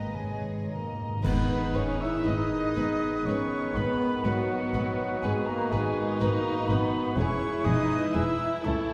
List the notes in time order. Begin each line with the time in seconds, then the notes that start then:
Already playing: G#1 G#3 A#3 A#4 B4 D#5 A#5
0.07 G#2
0.13 G#2 G#3 G#4 G#5
0.17 C#5
0.23 G#2
0.32 G#2
0.41 G#2
0.50 G#2
0.57 G#2
0.66 G#2 A#3
0.72 G#2 A#4 D#5 A#5
0.84 G#2
0.92 G#2
1.01 G#2
1.09 G#2
1.16 G#2
1.23 G#1 G#2 D#3 B3 D#4 G#4 B4 B5, concert bass drum, crash
1.27 B4
1.74 G#1 G#2 C#4 B4 C#6
1.78 C#5
2.01 E4 E5 E6
2.25 G#1 G#2 D#4 B4 D#5 D#6
2.75 G#1 G#2 B3 B4
3.25 G#1 G#2 C#4 B4 C#5 C#6
3.74 G#1 G#2 B3 B4 B5
4.24 G#1 G#2 F#3 F#4 B4 F#5
4.74 G#1 G#2 B4
5.22 G#1 G#2 G#3 G#4 B4 G#5
5.46 A#3 A#4 A#5
5.71 G#1 G#2 G#3 D#4 G#4 B4 G#5
6.19 G#1 G#2 A#3 A#4 B4 A#5
6.68 G#1 G#2 B3 B4 B5
7.16 E1 E2 E3 G#3 C#4 E4 G#4 B4 C#5 C#6
7.64 E1 E2 D#4 G#4 D#5 D#6
8.13 E1 E2 E4 G#4 E5 E6
8.62 C#2 A3 A4 C#5 A5
8.66 C#2 A3